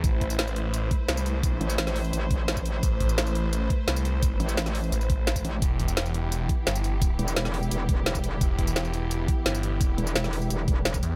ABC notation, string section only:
X:1
M:4/4
L:1/8
Q:1/4=172
K:Em
V:1 name="String section"
[A,EBc]8- | [A,EBc]8- | [A,EBc]8- | [A,EBc]8 |
[E,B,EG]8- | [E,B,EG]8- | [E,B,EG]8- | [E,B,EG]8 |]